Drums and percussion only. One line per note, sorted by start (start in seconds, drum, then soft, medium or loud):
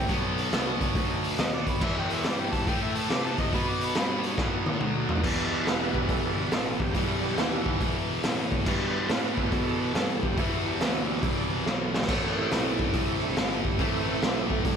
0.09 kick loud
0.09 open hi-hat medium
0.38 open hi-hat medium
0.53 snare loud
0.53 open hi-hat medium
0.81 kick medium
0.81 open hi-hat medium
0.95 kick loud
0.95 open hi-hat medium
1.24 open hi-hat medium
1.38 snare loud
1.38 open hi-hat medium
1.67 kick medium
1.67 open hi-hat medium
1.81 kick loud
1.81 crash loud
2.10 open hi-hat medium
2.24 snare loud
2.24 open hi-hat medium
2.53 kick medium
2.53 open hi-hat medium
2.67 kick loud
2.67 open hi-hat medium
2.95 open hi-hat medium
3.10 snare loud
3.10 open hi-hat medium
3.38 kick medium
3.38 open hi-hat medium
3.53 kick loud
3.53 open hi-hat medium
3.81 open hi-hat medium
3.95 snare loud
3.95 open hi-hat medium
4.23 open hi-hat medium
4.38 kick loud
4.38 snare medium
4.66 high tom medium
4.74 high tom medium
4.81 mid tom medium
5.09 floor tom loud
5.16 floor tom medium
5.24 kick loud
5.24 crash loud
5.67 snare loud
5.67 open hi-hat medium
5.95 kick medium
6.09 kick loud
6.09 open hi-hat medium
6.52 snare loud
6.52 open hi-hat medium
6.80 kick medium
6.95 kick loud
6.95 open hi-hat medium
7.38 snare loud
7.38 open hi-hat medium
7.66 kick medium
7.80 kick loud
7.80 open hi-hat medium
8.23 snare loud
8.23 open hi-hat medium
8.52 kick medium
8.66 kick loud
8.66 crash loud
9.09 snare loud
9.09 open hi-hat medium
9.38 kick medium
9.52 kick loud
9.52 open hi-hat medium
9.95 snare loud
9.95 open hi-hat medium
10.23 kick medium
10.38 kick loud
10.38 open hi-hat medium
10.81 snare loud
10.81 open hi-hat medium
11.23 kick loud
11.23 open hi-hat medium
11.66 snare medium
11.94 snare loud
12.02 snare medium
12.08 kick loud
12.08 crash loud
12.51 snare loud
12.51 open hi-hat medium
12.79 kick medium
12.94 kick loud
12.94 open hi-hat medium
13.37 snare loud
13.37 open hi-hat medium
13.65 kick medium
13.79 kick loud
13.79 open hi-hat medium
14.22 snare loud
14.22 open hi-hat medium
14.50 kick medium
14.65 kick loud
14.65 open hi-hat medium